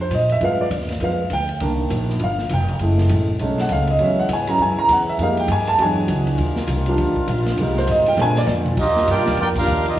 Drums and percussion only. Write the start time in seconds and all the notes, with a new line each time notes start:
0.11 hi-hat pedal, ride
0.29 ride
0.41 ride
0.71 hi-hat pedal, ride
0.81 snare
0.89 snare, ride
1.00 ride
1.30 hi-hat pedal, ride
1.49 ride
1.60 ride
1.90 hi-hat pedal, ride
2.10 snare
2.19 ride
2.39 snare
2.49 hi-hat pedal, ride
2.68 ride
2.79 ride
2.98 snare
3.09 hi-hat pedal, ride
3.39 ride
3.58 snare
3.69 hi-hat pedal, ride
3.87 ride
3.99 ride
4.29 hi-hat pedal, ride
4.47 ride
4.89 hi-hat pedal, ride
5.19 ride
5.37 ride
5.48 hi-hat pedal, ride
5.67 ride
5.79 ride
6.08 hi-hat pedal, ride
6.27 ride
6.38 ride
6.56 snare
6.67 hi-hat pedal, ride
6.86 ride
6.98 ride
7.16 kick
7.28 hi-hat pedal, ride
7.46 snare, ride
7.57 ride
7.77 snare
7.87 hi-hat pedal, ride
8.06 ride
8.18 snare
8.36 snare
8.47 snare, hi-hat pedal
8.66 mid tom
8.77 kick, crash
8.96 snare
9.08 hi-hat pedal, ride
9.26 snare
9.37 ride
9.56 kick, crash
9.67 hi-hat pedal
9.86 ride